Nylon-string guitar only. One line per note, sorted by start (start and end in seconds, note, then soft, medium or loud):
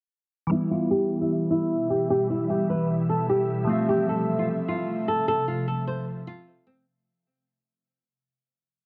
0.51 0.69 E4 medium
0.71 0.88 F4 medium
0.91 1.19 G4 medium
1.21 1.29 E4 medium
1.50 1.88 E4 medium
1.90 2.08 G4 medium
2.10 2.28 G4 loud
2.30 2.47 E4 medium
2.50 2.67 G4 medium
2.70 2.87 B4 medium
3.09 3.27 A4 medium
3.29 3.67 G4 medium
3.69 3.86 F4 medium
3.89 4.06 G4 medium
4.09 4.37 A4 medium
4.39 4.47 F4 medium
4.68 5.06 F4 medium
5.08 5.26 A4 medium
5.28 5.45 A4 loud
5.48 5.65 F4 medium
5.68 5.85 A4 medium
5.87 6.05 C5 medium
6.27 6.65 F4 medium
6.67 6.84 C4 medium